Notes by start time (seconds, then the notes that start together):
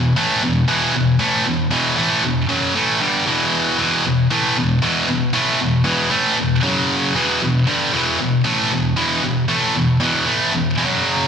Already playing: E2 B2
0.16 A2 E3 A3
0.42 E2 B2
0.68 E2 B2 E3
0.93 E2 B2
1.19 A2 E3 A3
1.45 E2 B2
1.71 E2 B2 E3
1.97 A2 E3 A3
2.24 E2 B2
2.49 F#2 C#3 F#3
2.76 A2 E3 A3
3.01 G2 D3 G3
3.26 E2 B2 E3
3.78 E2 B2 E3
4.05 E2 B2
4.30 A2 E3 A3
4.57 E2 B2
4.82 E2 B2 E3
5.08 E2 B2
5.33 A2 E3 A3
5.59 E2 B2
5.84 E2 B2 E3
6.10 A2 E3 A3
6.37 E2 B2
6.63 F#2 C#3 F#3
7.15 E2 B2 E3
7.42 E2 B2
7.67 G2 D3 G3
7.93 E2 B2 E3
8.19 E2 B2
8.44 A2 E3 A3
8.71 E2 B2
8.97 E2 B2 E3
9.23 E2 B2
9.48 A2 E3 A3
9.75 E2 B2
10.00 E2 B2 E3
10.26 A2 E3 A3
10.52 E2 B2
10.78 F#2 C#3 F#3